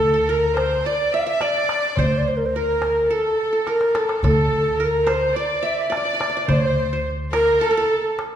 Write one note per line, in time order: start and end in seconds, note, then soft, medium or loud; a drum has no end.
0.00 0.73 D2 medium
0.00 0.13 A4 medium
0.00 0.24 A4 medium
0.00 0.32 A4 medium
0.00 darbuka ka soft
0.14 0.35 A4 medium
0.27 0.56 A#4 medium
0.27 1.42 A#4 medium
0.27 0.59 A#4 medium
0.54 0.83 C5 medium
0.54 0.88 C5 medium
0.54 darbuka tek medium
0.84 1.13 D5 medium
0.84 1.41 D5 medium
0.84 1.16 D5 medium
1.13 1.27 E5 medium
1.13 1.26 E5 medium
1.13 1.21 E5 medium
1.13 darbuka ka soft
1.19 1.29 F5 medium
1.27 2.18 E5 medium
1.27 1.43 E5 loud
1.27 1.41 E5 medium
1.27 darbuka ka soft
1.41 2.40 D5 medium
1.41 2.01 D5 loud
1.41 1.98 D5 medium
1.41 darbuka tek medium
1.56 darbuka ka soft
1.69 darbuka tek medium
1.83 darbuka ka soft
1.97 2.99 D2 medium
1.97 2.17 C5 medium
1.97 3.04 C5 medium
1.97 2.20 C5 medium
1.97 darbuka dum medium
2.11 darbuka ka soft
2.18 2.29 D5 medium
2.26 2.38 C5 medium
2.26 darbuka ka soft
2.37 2.47 A#4 medium
2.46 2.47 C5 medium
2.46 2.58 C5 medium
2.54 3.06 A#4 medium
2.54 3.16 A#4 medium
2.54 3.14 A#4 medium
2.54 darbuka ka soft
2.82 darbuka tek medium
2.96 darbuka ka soft
3.10 3.66 A4 medium
3.10 3.52 A4 medium
3.10 3.71 A4 medium
3.10 darbuka ka soft
3.39 darbuka ka soft
3.53 3.73 A4 medium
3.53 darbuka ka soft
3.67 3.95 A#4 medium
3.67 4.01 A#4 medium
3.67 3.99 A#4 medium
3.67 darbuka tek soft
3.81 darbuka ka medium
3.93 4.20 A4 medium
3.93 4.23 A4 medium
3.93 darbuka tek medium
3.97 4.24 A4 medium
4.09 darbuka ka medium
4.21 5.24 D2 medium
4.21 4.74 A4 medium
4.21 4.86 A4 medium
4.21 darbuka dum medium
4.26 4.86 A4 medium
4.52 darbuka ka soft
4.77 5.06 A#4 medium
4.77 5.93 A#4 medium
4.85 5.15 A#4 medium
5.06 5.35 C5 medium
5.06 6.12 C5 medium
5.06 darbuka tek medium
5.13 5.38 C5 medium
5.34 5.89 D5 medium
5.39 5.69 D5 medium
5.63 6.54 E5 medium
5.63 darbuka ka soft
5.67 5.87 E5 medium
5.78 darbuka ka soft
5.87 5.97 D5 medium
5.87 6.43 D5 medium
5.87 5.98 E5 medium
5.92 6.54 D5 loud
5.92 darbuka tek medium
5.97 6.05 D5 medium
6.05 6.14 D5 medium
6.05 darbuka ka soft
6.14 6.20 D5 medium
6.20 6.29 D5 medium
6.20 darbuka tek medium
6.29 6.36 D5 medium
6.34 7.35 D5 medium
6.34 darbuka ka soft
6.48 7.49 D2 medium
6.48 7.05 C5 medium
6.48 6.92 C5 medium
6.48 darbuka dum medium
6.52 7.08 C5 medium
6.77 darbuka ka soft
6.93 7.98 C5 medium
7.33 7.59 A#4 medium
7.33 7.67 A#4 medium
7.33 7.60 A#4 loud
7.33 darbuka tek medium
7.61 7.77 A4 medium
7.61 8.18 A4 medium
7.61 8.14 A4 medium
7.71 7.83 A#4 medium
7.77 8.36 A4 medium
7.89 darbuka ka soft
8.04 darbuka ka soft
8.19 darbuka tek medium